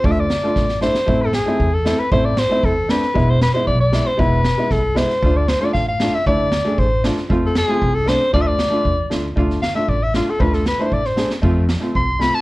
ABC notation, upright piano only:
X:1
M:2/4
L:1/16
Q:1/4=116
K:none
V:1 name="Upright piano"
[A,DF]2 z [A,DF] z2 [A,DE] z | [A,CE]2 z [A,CE] z2 [A,CE] z | [A,CE]2 z [A,CE] z2 [A,CD] z | [^G,B,E]2 z [G,B,E] z2 [G,B,E] z |
[^G,B,E]2 z [G,B,E] z2 [G,B,E] z | [A,DF]2 z [A,DF] z2 [A,DF] z | [A,DE]2 z [A,D^G] z2 [A,DF] z | [A,CF]2 z [A,CF] z2 [A,CD] z |
[A,DF]2 z [A,DF] z2 [A,DF] z | [A,DF]2 z [A,DF] z2 [A,DF] z | [A,DF]2 z [A,DE] z2 [A,D^G] z | [A,CF]2 z [A,CF] z2 [A,CF] z |]